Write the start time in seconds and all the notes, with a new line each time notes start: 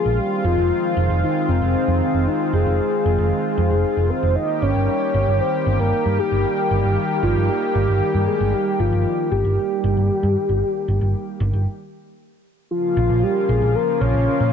Already playing: C#3 F3 A#3 F4 G#4
0.05 A#1
0.18 D#3 G#3 C4 G4
0.44 F1 F4
0.57 F1
0.97 F1
1.10 F1
1.23 D#4
1.49 F1 C4
1.62 F1
1.88 F2
2.14 F1
2.27 D#4
2.53 F1 G#4
2.66 F1
3.05 F1
3.18 F1
3.58 F2
3.71 F1
3.97 F1
4.10 C5
4.23 F1
4.36 D#3 G3 A#3 G4 D#5
4.62 G1 C#5
4.75 G1
5.14 G1
5.27 G1
5.40 C5
5.66 G1
5.79 G1 A#4
6.06 G2
6.19 G4
6.32 G1
6.71 G1
6.84 G1
7.23 G1 F4
7.36 G1
7.49 G4
7.75 G1
7.88 G1
8.14 G2
8.27 G#4
8.40 G1
8.54 G4
8.79 G1 F4
8.92 G1
9.32 G1 G4
9.45 G1
9.84 G1
9.97 G1
10.23 G2
10.49 G1
10.88 G1
11.01 G1
11.40 G1
11.53 G1
12.71 C#3 F3 A#3 F4
12.97 A#1
13.10 A#1
13.23 G4
13.49 A#1 G#4
13.62 A#1
13.75 A#4
14.01 A#1 C#5
14.14 A#1
14.40 A#2